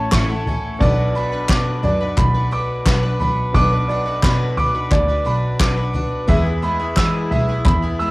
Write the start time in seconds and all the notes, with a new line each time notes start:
Already playing: A1 A2 A3 C#4 E4 A4 C#5 A5 C#6
0.12 A1 A2 E3 A3 C#4 E4 A4 E5 C#6, kick, snare, clap
0.29 A3 C#4 E4 A4 F#5
0.46 A3 C#4 E4 A4 G#5, floor tom
0.79 B1 B2 F#3 B3 D4 F#4 B4 D5, kick, floor tom
1.15 F#3 D4 F#4 B4 B5
1.32 D4 F#4 B4
1.49 B2 F#3 D4 F#4 B4 D6, kick, snare, clap
1.83 F#2 F#3 D4 F#4 B4 D5, floor tom
2.00 D4 F#4 B4
2.17 B1 B5, kick, clap, floor tom
2.34 D4 F#4 B4
2.51 F#3 D4 F#4 B4 D6
2.85 B1 B2 F#3 D4 F#4 B4, kick, snare, clap
3.03 D4 F#4 B4
3.20 B1 F#3 D4 F#4 B4 B5, floor tom
3.53 B1 B2 F#3 B3 D4 F#4 B4 D5 D6, kick, floor tom
3.72 D4 F#4 B4
3.88 F#3 D4 F#4 B4 D5
4.06 D4 F#4 B4
4.23 B2 F#3 D4 F#4 B4 B5, kick, snare, clap
4.57 F#3 D4 F#4 B4 D6, floor tom
4.74 D4 F#4 B4
4.91 D2 D5, kick, clap, floor tom
5.08 D4 F#4 B4
5.25 B1 F#3 D4 F#4 B4 B5
5.59 B1 B2 F#3 D4 F#4 B4 D6, kick, snare, clap
5.76 D4 F#4 B4
5.93 F#3 D4 F#4 B4, floor tom
6.27 E2 E3 G#3 B3 E4 G#4 E5, kick, floor tom
6.45 B3 E4 G#4
6.62 G#3 B3 E4 G#4 B5
6.80 B3 E4 G#4
6.97 E3 G#3 B3 E4 G#4 E6, kick, snare, clap
7.31 B1 G#3 B3 E4 G#4 E5, floor tom
7.48 B3 E4 G#4
7.65 E2 B5, kick, clap, floor tom
7.82 B3 E4 G#4
7.99 G#3 B3 E4 G#4 E6